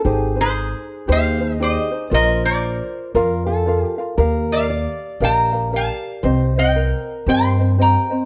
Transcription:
X:1
M:4/4
L:1/8
Q:"Swing" 1/4=116
K:Bb
V:1 name="Resonator guitar played with a steel bar"
z [_Ac]3 [cf]2 [ce]2 | [Be] [Bd]6 z | z [df]3 [gb]2 [fa]2 | z [eg]3 [gc']2 [gb]2 |]
V:2 name="Steel-string acoustic guitar"
_A8 | c4 B A2 z | B2 d6 | c2 B6 |]
V:3 name="Ukulele"
[EG_Ac] [EAc]3 [EGAc] [EAc] [EGAc] [EAc] | [FBdf]4 [FBdf] [FBf] [FBdf] [FBf] | [GBf]4 [GBef] [GBf] [GBf]2 | [CGce] [Cce]3 [CGce] [Cce] [CGce] [Cce] |]
V:4 name="Upright bass" clef=bass
_A,,,4 E,,4 | B,,,4 F,,4 | E,,4 B,,,4 | C,,4 G,,4 |]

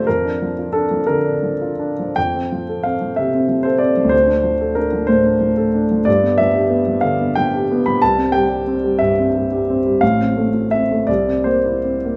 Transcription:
X:1
M:6/8
L:1/16
Q:3/8=60
K:F
V:1 name="Grand piano"
B4 A2 B6 | g4 f2 e3 c d2 | c4 B2 c6 | d2 e4 f2 g3 =b |
a2 g4 e6 | f4 e2 d2 c4 |]
V:2 name="Grand piano"
F,, D F, F D F, D, D F, F D F, | F,, C F, A C F, C, C F, A C F, | D,, D F, A D F, A,, D F, A D F, | G,, =B, F, G B, F, D, B, F, G B, F, |
C,, C G, G C G, G,, C G, G C G, | A,,, C A, F C A, C,, C B, E C B, |]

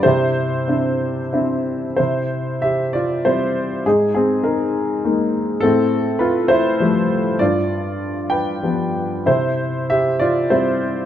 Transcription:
X:1
M:3/4
L:1/8
Q:1/4=99
K:C
V:1 name="Upright piano"
[EGc]4 z2 | [Ec]2 [Ge] [Fd] c2 | [_E_A] [CA] [E_B]3 z | [CA]2 [FB] [Ec]3 |
[Fd]3 [Bg]2 z | [Ec]2 [Ge] [Fd] [Ec]2 |]
V:2 name="Upright piano" clef=bass
C,2 [CDE]2 [CDE]2 | C,4 [G,CE]2 | _A,,4 [_A,_B,_E]2 | A,,4 [F,G,A,]2 |
G,,4 [F,G,B,]2 | C,4 [G,C]2 |]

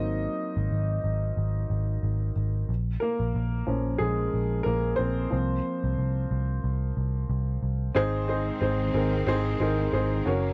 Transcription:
X:1
M:4/4
L:1/16
Q:"Swing 16ths" 1/4=91
K:Abmix
V:1 name="Upright piano"
[Ee]6 z8 z2 | z2 [B,B]6 [A,A]4 [B,B]2 [Cc]2- | [Cc]2 z12 z2 | [CEAc]2 [CEAc]2 [CEAc]2 [CEAB]2 [CEAc]2 [CEAB]2 [CEAc]2 [DGBd]2 |]
V:2 name="Upright piano"
[G,B,C]12- [G,B,C]2 z2 | z6 [F,B,D]2 z8 | [F,B,C]16 | A,,6 z8 z2 |]
V:3 name="String section" clef=bass
z16 | z16 | z16 | [E,A,C]12- [E,A,C]2 [D,G,B,]2 |]
V:4 name="Picked electric bass" clef=bass
A,,,2 z A,,, A,,,2 A,,,2 A,,,2 A,,,2 A,,,2 A,,,2 | B,,,2 z B,,, B,,,2 B,,,2 B,,,2 B,,,2 B,,,2 B,,,2 | C,,2 z C,, C,,2 C,,2 C,,2 C,,2 C,,2 C,,2 | A,,,4 A,,,2 A,,,2 A,,,2 A,,,2 A,,,2 G,,,2 |]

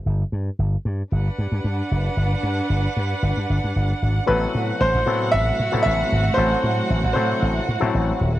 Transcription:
X:1
M:4/4
L:1/16
Q:1/4=114
K:Ador
V:1 name="Grand piano"
z16 | z16 | B4 c4 e4 e4 | c6 c8 z2 |]
V:2 name="Violin section"
z8 [DBf]8- | [DBf]16 | [Ff]16- | [Ff]16 |]
V:3 name="Clav"
z16 | z16 | [F,B,CEA]4- [F,B,CEA] z [F,B,CEA]4 z [F,B,CEA]4 z | [F,A,CEA]4- [F,A,CEA] z [F,A,CEA]4 z [F,A,CEA]4 z |]
V:4 name="String section" clef=bass
z16 | z16 | [C,F,A,E]16- | [C,F,A,E]16 |]
V:5 name="Slap bass" clef=bass
G,,,2 G,,2 G,,,2 G,,2 G,,,2 G,, G,, G,,2 F,,,2 | G,,,2 G,,2 G,,,2 G,,2 G,,, G,, G,,, G,, G,,,2 ^G,,,2 | A,,,2 A,,2 A,,, A,,, A,,2 A,,,2 A,, A,, A,,,2 ^G,,,2 | A,,,2 A,,2 A,,, A,,, A,,2 A,,,2 A,, A,, A,,,2 ^D,,,2 |]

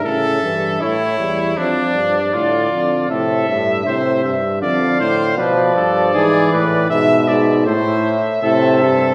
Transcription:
X:1
M:4/4
L:1/8
Q:1/4=79
K:Aphr
V:1 name="Trumpet"
e2 ^c2 d4 | e3 z f2 d2- | d2 e2 e4 |]
V:2 name="Trumpet"
A2 E2 D2 F2 | A e c e d c =B A | ^G =B e d c z A A |]
V:3 name="Trombone" clef=bass
^C, E, A, G, F,2 D, D, | C, A,, C, z D,2 F,2 | E,2 =B,,2 A,,2 C,2 |]
V:4 name="Bass trombone" clef=bass
A,, G,, A,, E,, F,, G,, A,, F,, | A,, G,, A,, G,, F,, A,, =B,, G,, | ^G,, A,, G,, G,, A,, z A,, =G,, |]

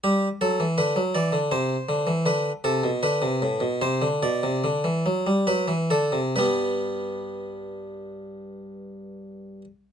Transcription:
X:1
M:4/4
L:1/16
Q:1/4=73
K:G
V:1 name="Harpsichord"
G2 A2 B2 d2 c4 B2 A2 | B4 c2 d6 B2 A2 | [G,B,B]16 |]
V:2 name="Harpsichord" clef=bass
G,2 F, E, D, F, E, D, C,2 D, E, D,2 C, B,, | D, C, A,, B,, C, D, B,, C, D, E, F, G, F, E, D, C, | G,,16 |]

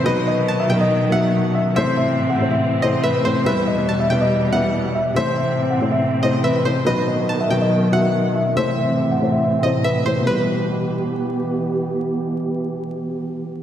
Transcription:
X:1
M:4/4
L:1/16
Q:1/4=141
K:Em
V:1 name="Synth pluck"
^d4 a2 g4 f2 z4 | e8- e2 ^d2 e2 c2 | e4 a2 g4 f2 z4 | e8- e2 ^d2 e2 c2 |
^d4 a2 g4 f2 z4 | e8- e2 ^d2 e2 c2 | B12 z4 | z16 |]
V:2 name="Grand piano"
B2 ^d3 e2 d3 e4 e2 | c2 e3 f2 e3 c2 B2 c2 | B2 ^d3 e2 d3 e4 e2 | c2 e3 f2 e3 c2 B2 c2 |
B2 ^d3 e2 d3 e4 e2 | c2 e3 f2 e3 c2 B2 c2 | B12 z4 | z16 |]
V:3 name="Felt piano"
[B,,F,^DB]6 [B,,F,DB]4 [B,,^D,F,F]6 | [C,A,Ec]6 [C,A,Ec]4 [C,A,Ec]4 [C,A,Ec]2 | [B,,G,EB]6 [B,,G,EB]4 [B,,G,EB]6 | [C,A,Ec]6 [C,A,Ec]4 [C,A,Ec]4 [C,A,Ec]2 |
[B,,F,^DB]6 [B,,F,DB]4 [B,,^D,F,F]6 | [C,A,Ec]6 [C,A,Ec]4 [C,A,Ec]4 [C,A,Ec]2 | [B,,G,EB]16- | [B,,G,EB]16 |]
V:4 name="String section" clef=bass
[B,,^D,F,]16 | [A,,E,C]16 | [E,,B,,G,]16 | [A,,E,C]16 |
[B,,^D,F,]16 | [A,,E,C]16 | [E,B,G]16- | [E,B,G]16 |]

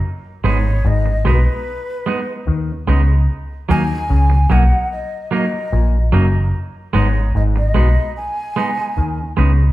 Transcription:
X:1
M:4/4
L:1/16
Q:1/4=74
K:Abdor
V:1 name="Flute"
z2 d2 e2 c8 z2 | z2 a4 g2 e2 e4 z2 | z2 d2 e e3 a6 z2 |]
V:2 name="Clean electric guitar"
z2 [A,CE]2 z2 [A,CE]2 z2 [A,CE]2 z2 [A,CE]2 | z2 [G,B,E]2 z2 [G,B,E]2 z2 [G,B,E]2 z2 [G,B,E]2 | z2 [A,CE]2 z2 [A,CE]2 z2 [A,CE]2 z2 [A,CE]2 |]
V:3 name="Clav" clef=bass
z2 A,,2 A,,2 C, z4 z E,2 D,2 | z2 E,2 D,2 C, z4 z B,,2 G,,2 | z2 A,,2 A,,2 C, z4 z E,2 D,2 |]
V:4 name="Fingered electric bass" clef=bass
z2 A,,,2 A,,,2 C,, z4 z E,,2 D,,2 | z2 E,,2 D,,2 C,, z4 z B,,,2 G,,,2 | z2 A,,,2 A,,,2 C,, z4 z E,,2 D,,2 |]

